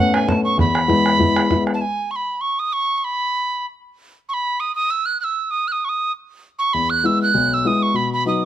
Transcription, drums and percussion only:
0.14 bodhran
0.28 bodhran
0.59 bodhran
0.75 bodhran
0.90 bodhran
1.06 bodhran
1.13 bodhran
1.20 bodhran
1.36 bodhran
1.51 bodhran
1.67 bodhran

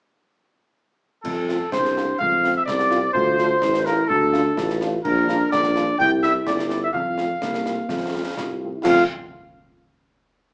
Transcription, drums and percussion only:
1.25 concert bass drum, crash
1.49 snare
1.72 concert bass drum, snare
1.85 snare
1.97 snare
2.21 concert bass drum
2.44 snare
2.68 concert bass drum, snare
2.79 snare
2.91 snare
3.15 concert bass drum
3.38 snare
3.62 concert bass drum, snare
3.74 snare
3.86 snare
4.09 concert bass drum
4.34 snare
4.57 concert bass drum, snare
4.70 snare
4.81 snare
5.05 concert bass drum, crash
5.29 snare
5.52 concert bass drum, snare
5.64 snare
5.76 snare
5.99 concert bass drum
6.23 snare
6.47 concert bass drum, snare
6.59 snare
6.70 snare
6.94 concert bass drum
7.18 snare
7.42 concert bass drum, snare
7.54 snare
7.66 snare
7.89 concert bass drum, snare
8.37 concert bass drum, snare
8.85 concert bass drum, snare, crash

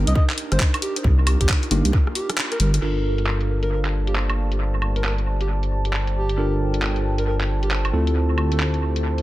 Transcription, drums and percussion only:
0.07 closed hi-hat
0.15 kick
0.30 clap
0.38 open hi-hat
0.52 cross-stick, closed hi-hat
0.60 kick, clap
0.74 closed hi-hat, high woodblock
0.82 open hi-hat
0.96 closed hi-hat
1.04 kick
1.27 open hi-hat, high woodblock
1.41 kick, closed hi-hat
1.49 kick, clap
1.63 closed hi-hat
1.71 open hi-hat
1.85 closed hi-hat
1.93 kick
2.07 cross-stick
2.15 open hi-hat
2.30 cross-stick, closed hi-hat
2.38 clap
2.52 closed hi-hat
2.60 open hi-hat
2.74 closed hi-hat
2.82 crash
3.18 closed hi-hat
3.27 clap
3.41 closed hi-hat
3.63 closed hi-hat
3.85 clap, closed hi-hat
4.07 closed hi-hat
4.15 clap
4.30 closed hi-hat, high woodblock
4.52 closed hi-hat
4.82 high woodblock
4.96 closed hi-hat
5.04 clap
5.18 closed hi-hat
5.41 closed hi-hat
5.63 closed hi-hat
5.85 closed hi-hat
5.93 clap
6.07 closed hi-hat
6.29 closed hi-hat
6.74 closed hi-hat
6.82 clap
6.96 closed hi-hat
7.18 closed hi-hat
7.41 clap, closed hi-hat
7.63 closed hi-hat
7.71 clap
7.85 closed hi-hat, high woodblock
8.07 closed hi-hat
8.38 high woodblock
8.52 closed hi-hat
8.60 clap
8.74 closed hi-hat
8.96 closed hi-hat
9.18 closed hi-hat

